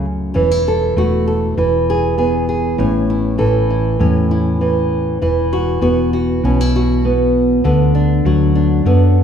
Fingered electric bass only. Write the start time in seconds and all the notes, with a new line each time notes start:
Already playing: C#2
0.36 E1
0.97 E1
1.57 E1
2.79 A1
3.40 A1
4.00 E2
5.22 E1
5.82 E1
6.43 B1
7.65 D2
8.25 D2
8.85 F#2